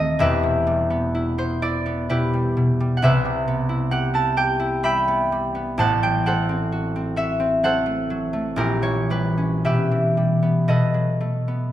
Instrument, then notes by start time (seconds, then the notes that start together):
harp
Already playing: D#1 D#2 D#3 A3 C4 F#4 A4 C5 D#5 F#5
0.19 E1 E2 G4 B4 E5
0.43 B2
0.67 G3
0.90 B3
1.15 E4
1.38 B3 C5
1.62 E4 D5
1.86 B3
2.09 B2 E4 G4 B4
2.33 G3
2.57 B2
2.80 G3
2.97 F#5
3.02 C2 C3 B4 C5 E5
3.25 G3
3.48 B3
3.69 E4
3.91 G4 F#5
4.14 E4 A5
4.37 G4 G5
4.59 E4
4.83 G3 E5 G5 B5
5.08 B3
5.32 G3
5.55 B3
5.78 A1 A2 C5 F#5 A5
6.02 F#3 G5
6.26 A3 A4 C5 F#5
6.49 C4
6.72 F#4
6.96 C4
7.16 F#4 E5
7.40 C4
7.63 F#3 A4 C5 F#5
7.86 A3
8.10 F#3
8.33 A3
8.56 A#1 A#2 E4 G4 A#4
8.82 E3 C#5
9.10 G3 B4
9.37 C#4
9.65 B2 G4 B4 E5
9.91 E3
10.17 G3
10.43 B3
10.68 B2 A4 B4 D#5
10.94 F#3
11.21 A3
11.48 B3